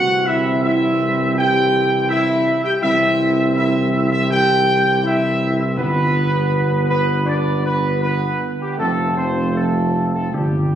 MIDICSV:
0, 0, Header, 1, 6, 480
1, 0, Start_track
1, 0, Tempo, 737101
1, 1847, Time_signature, 4, 2, 24, 8
1, 4253, Tempo, 751880
1, 5693, Tempo, 775194
1, 6910, End_track
2, 0, Start_track
2, 0, Title_t, "Trumpet section"
2, 0, Program_c, 0, 61
2, 0, Note_on_c, 0, 78, 125
2, 152, Note_off_c, 0, 78, 0
2, 168, Note_on_c, 0, 76, 107
2, 402, Note_off_c, 0, 76, 0
2, 410, Note_on_c, 0, 76, 106
2, 862, Note_off_c, 0, 76, 0
2, 893, Note_on_c, 0, 79, 117
2, 1343, Note_off_c, 0, 79, 0
2, 1361, Note_on_c, 0, 76, 113
2, 1700, Note_off_c, 0, 76, 0
2, 1720, Note_on_c, 0, 79, 108
2, 1776, Note_off_c, 0, 79, 0
2, 1837, Note_on_c, 0, 76, 122
2, 2291, Note_off_c, 0, 76, 0
2, 2319, Note_on_c, 0, 76, 110
2, 2654, Note_off_c, 0, 76, 0
2, 2676, Note_on_c, 0, 76, 111
2, 2790, Note_off_c, 0, 76, 0
2, 2805, Note_on_c, 0, 79, 127
2, 3260, Note_off_c, 0, 79, 0
2, 3289, Note_on_c, 0, 76, 116
2, 3639, Note_off_c, 0, 76, 0
2, 3647, Note_on_c, 0, 76, 87
2, 3760, Note_off_c, 0, 76, 0
2, 3763, Note_on_c, 0, 71, 113
2, 4461, Note_off_c, 0, 71, 0
2, 4481, Note_on_c, 0, 71, 104
2, 4708, Note_off_c, 0, 71, 0
2, 4719, Note_on_c, 0, 74, 104
2, 4964, Note_off_c, 0, 74, 0
2, 4967, Note_on_c, 0, 71, 100
2, 5191, Note_off_c, 0, 71, 0
2, 5207, Note_on_c, 0, 71, 99
2, 5473, Note_off_c, 0, 71, 0
2, 5574, Note_on_c, 0, 67, 73
2, 5685, Note_off_c, 0, 67, 0
2, 5693, Note_on_c, 0, 69, 90
2, 5912, Note_off_c, 0, 69, 0
2, 5930, Note_on_c, 0, 72, 78
2, 6150, Note_off_c, 0, 72, 0
2, 6168, Note_on_c, 0, 69, 73
2, 6501, Note_off_c, 0, 69, 0
2, 6526, Note_on_c, 0, 69, 74
2, 6638, Note_off_c, 0, 69, 0
2, 6652, Note_on_c, 0, 67, 65
2, 6910, Note_off_c, 0, 67, 0
2, 6910, End_track
3, 0, Start_track
3, 0, Title_t, "French horn section"
3, 0, Program_c, 1, 60
3, 0, Note_on_c, 1, 66, 106
3, 155, Note_off_c, 1, 66, 0
3, 173, Note_on_c, 1, 64, 91
3, 395, Note_off_c, 1, 64, 0
3, 415, Note_on_c, 1, 64, 101
3, 864, Note_off_c, 1, 64, 0
3, 883, Note_on_c, 1, 67, 100
3, 1359, Note_on_c, 1, 64, 115
3, 1363, Note_off_c, 1, 67, 0
3, 1699, Note_off_c, 1, 64, 0
3, 1721, Note_on_c, 1, 67, 92
3, 1831, Note_on_c, 1, 64, 104
3, 1835, Note_off_c, 1, 67, 0
3, 2288, Note_off_c, 1, 64, 0
3, 2312, Note_on_c, 1, 64, 85
3, 2651, Note_off_c, 1, 64, 0
3, 2673, Note_on_c, 1, 64, 77
3, 2789, Note_off_c, 1, 64, 0
3, 2794, Note_on_c, 1, 67, 98
3, 3255, Note_off_c, 1, 67, 0
3, 3273, Note_on_c, 1, 64, 106
3, 3616, Note_off_c, 1, 64, 0
3, 3641, Note_on_c, 1, 64, 82
3, 3697, Note_off_c, 1, 64, 0
3, 3751, Note_on_c, 1, 59, 103
3, 4371, Note_off_c, 1, 59, 0
3, 4479, Note_on_c, 1, 59, 86
3, 4707, Note_off_c, 1, 59, 0
3, 4713, Note_on_c, 1, 62, 78
3, 4944, Note_off_c, 1, 62, 0
3, 4951, Note_on_c, 1, 59, 66
3, 5183, Note_off_c, 1, 59, 0
3, 5211, Note_on_c, 1, 59, 82
3, 5546, Note_off_c, 1, 59, 0
3, 5574, Note_on_c, 1, 55, 69
3, 5683, Note_on_c, 1, 57, 73
3, 5694, Note_off_c, 1, 55, 0
3, 5907, Note_off_c, 1, 57, 0
3, 5928, Note_on_c, 1, 60, 71
3, 6149, Note_off_c, 1, 60, 0
3, 6151, Note_on_c, 1, 57, 67
3, 6493, Note_off_c, 1, 57, 0
3, 6523, Note_on_c, 1, 57, 56
3, 6578, Note_off_c, 1, 57, 0
3, 6643, Note_on_c, 1, 55, 52
3, 6910, Note_off_c, 1, 55, 0
3, 6910, End_track
4, 0, Start_track
4, 0, Title_t, "Trombone section"
4, 0, Program_c, 2, 61
4, 0, Note_on_c, 2, 52, 84
4, 0, Note_on_c, 2, 60, 84
4, 1730, Note_off_c, 2, 52, 0
4, 1730, Note_off_c, 2, 60, 0
4, 1840, Note_on_c, 2, 52, 83
4, 1843, Note_on_c, 2, 60, 86
4, 3739, Note_off_c, 2, 52, 0
4, 3740, Note_off_c, 2, 60, 0
4, 3771, Note_on_c, 2, 59, 79
4, 3772, Note_on_c, 2, 50, 80
4, 5668, Note_off_c, 2, 50, 0
4, 5693, Note_off_c, 2, 59, 0
4, 5694, Note_on_c, 2, 53, 69
4, 5695, Note_on_c, 2, 60, 63
4, 6644, Note_on_c, 2, 50, 57
4, 6648, Note_off_c, 2, 53, 0
4, 6910, Note_off_c, 2, 50, 0
4, 6910, Note_off_c, 2, 60, 0
4, 6910, End_track
5, 0, Start_track
5, 0, Title_t, "Timpani"
5, 0, Program_c, 3, 47
5, 6647, Note_on_c, 3, 43, 38
5, 6691, Note_off_c, 3, 43, 0
5, 6698, Note_on_c, 3, 43, 32
5, 6742, Note_off_c, 3, 43, 0
5, 6749, Note_on_c, 3, 43, 39
5, 6792, Note_off_c, 3, 43, 0
5, 6802, Note_on_c, 3, 43, 44
5, 6837, Note_off_c, 3, 43, 0
5, 6845, Note_on_c, 3, 43, 40
5, 6883, Note_off_c, 3, 43, 0
5, 6891, Note_on_c, 3, 43, 42
5, 6910, Note_off_c, 3, 43, 0
5, 6910, End_track
6, 0, Start_track
6, 0, Title_t, "Tuba"
6, 0, Program_c, 4, 58
6, 0, Note_on_c, 4, 36, 80
6, 1732, Note_off_c, 4, 36, 0
6, 1842, Note_on_c, 4, 36, 84
6, 3769, Note_on_c, 4, 31, 79
6, 3778, Note_off_c, 4, 36, 0
6, 5511, Note_off_c, 4, 31, 0
6, 5694, Note_on_c, 4, 29, 73
6, 6623, Note_off_c, 4, 29, 0
6, 6643, Note_on_c, 4, 31, 59
6, 6910, Note_off_c, 4, 31, 0
6, 6910, End_track
0, 0, End_of_file